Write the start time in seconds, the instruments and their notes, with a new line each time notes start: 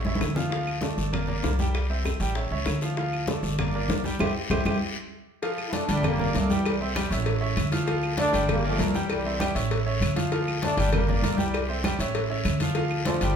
Already playing: upright bass A1
0.05 grand piano C#4 C#5 E5, high conga
0.15 high conga
0.21 upright bass D2, high bongo, low bongo, short guiro, claves
0.35 grand piano F3 F4 F5, high bongo, low conga, short guiro
0.50 grand piano F3 F4 F5, high bongo, high conga, long guiro
0.67 high conga, claves
0.81 grand piano A3 A4 D5, high bongo, high conga, short guiro
0.97 upright bass G1, high conga, short guiro
1.12 grand piano A#3 A#4 D5, high bongo, high conga, low conga, long guiro, claves
1.28 grand piano A#3 A#4 D5, high conga, low conga
1.43 upright bass C2, high bongo, low bongo, high conga, short guiro
1.59 grand piano G3 G4 G5, high conga, short guiro
1.74 high bongo, high conga, long guiro, claves
1.89 grand piano C4 C5 E5, high bongo, high conga
2.04 high bongo, high conga, short guiro, claves
2.20 upright bass A1, grand piano G3 G4 G5, high bongo, high conga, short guiro
2.35 grand piano C#4 C#5 E5, high bongo, high conga, long guiro
2.51 upright bass C#2, grand piano C#4 C#5 E5, high conga
2.66 upright bass D2, high bongo, low bongo, high conga, short guiro, claves
2.81 grand piano F3 F4 F5, high bongo, short guiro
2.97 grand piano F3 F4 F5, high bongo, high conga, long guiro
3.12 high conga, claves
3.27 grand piano A3 A4 D5, high bongo, high conga, short guiro
3.43 upright bass G1, high conga, short guiro
3.59 grand piano A#3 A#4 D5, high bongo, high conga, low conga, long guiro, claves
3.74 grand piano A#3 A#4 D5, high conga
3.88 upright bass C2, high bongo, low bongo, high conga, short guiro
4.04 grand piano G3 G4 G5, high conga, short guiro
4.19 upright bass C2, grand piano E4 G4 C5, high bongo, high conga, long guiro, claves
4.50 upright bass C2, grand piano E4 G4 C5, high bongo, high conga, long guiro, claves
4.65 upright bass C2, grand piano E4 G4 C5, high bongo, high conga, long guiro, claves
5.42 grand piano F3 F4 F5, cowbell, high conga, long guiro
5.58 high conga, claves
5.67 trombone section E4
5.73 grand piano A3 A4 D5, trombone section A3 D4, cowbell, high conga, short guiro
5.88 upright bass G1, grand piano G3 G4 G5, cowbell, high conga, short guiro
6.03 trombone section G3 A#3, cowbell, high conga, low conga, long guiro, claves
6.19 grand piano A#3 A#4 D5, high conga, low conga
6.34 upright bass C2, trombone section D3 A3, grand piano A#3 A#4 D5, cowbell, high conga, short guiro
6.50 trombone section E3 G3, grand piano G3 G4 G5, high conga, short guiro
6.65 cowbell, high conga, long guiro, claves
6.81 grand piano C4 C5 E5, high conga
6.95 grand piano G3 G4 G5, cowbell, high conga, short guiro, claves
7.11 upright bass A1, grand piano C#4 C#5 E5, cowbell, high conga, short guiro
7.26 cowbell, high conga, long guiro
7.41 grand piano C#4 C#5 E5, high conga
7.57 upright bass D2, cowbell, high conga, short guiro, claves
7.72 grand piano F3 F4 F5, cowbell, high conga, short guiro
7.86 grand piano F3 F4 F5, cowbell, high conga, long guiro
8.03 high conga, claves
8.17 grand piano A3 A4 D5, trombone section A3 D4, cowbell, high conga, short guiro
8.32 upright bass G1, grand piano G3 G4 G5, cowbell, high conga, short guiro
8.49 trombone section G3 A#3, cowbell, high conga, low conga, long guiro, claves
8.63 trombone section F3 A3, grand piano A#3 A#4 D5, high conga
8.79 upright bass C2, grand piano A#3 A#4 D5, cowbell, high conga, short guiro
8.94 trombone section E3 G3, grand piano G3 G4 G5, high conga, short guiro
9.10 cowbell, high conga, long guiro, claves
9.25 grand piano C4 C5 E5, high conga
9.39 grand piano G3 G4 G5, cowbell, high conga, short guiro, claves
9.54 upright bass A1, grand piano C#4 C#5 E5, cowbell, high conga, short guiro
9.71 cowbell, high conga, long guiro
9.86 grand piano C#4 C#5 E5, high conga
10.00 upright bass D2, cowbell, high conga, short guiro, claves
10.16 grand piano F3 F4 F5, cowbell, high conga, short guiro
10.32 grand piano F3 F4 F5, cowbell, high conga, long guiro
10.48 high conga, claves
10.62 grand piano A3 A4 D5, trombone section A3 D4, cowbell, high conga, short guiro
10.77 upright bass G1, grand piano G3 G4 G5, cowbell, short guiro
10.92 trombone section G3 A#3, cowbell, high conga, low conga, long guiro, claves
11.08 grand piano A#3 A#4 D5, high conga, low conga
11.22 upright bass C2, trombone section D3 A3, grand piano A#3 A#4 D5, cowbell, high conga, short guiro
11.37 trombone section E3 G3, grand piano G3 G4 G5, high conga, short guiro
11.54 cowbell, high conga, long guiro, claves
11.69 grand piano C4 C5 E5, high conga
11.84 grand piano G3 G4 G5, cowbell, high conga, short guiro, claves
11.99 upright bass A1, grand piano C#4 C#5 E5, cowbell, high conga, short guiro
12.15 cowbell, high conga, long guiro
12.29 grand piano C#4 C#5 E5, high conga
12.45 upright bass D2, cowbell, high conga, short guiro, claves
12.60 grand piano F3 F4 F5, cowbell, high conga, short guiro
12.75 grand piano F3 F4 F5, cowbell, high conga, long guiro
12.91 high conga, claves
13.04 trombone section D3 F3, grand piano A3 A4 D5, cowbell, high conga, short guiro
13.21 upright bass G1, grand piano G3 G4 G5, cowbell, high conga, short guiro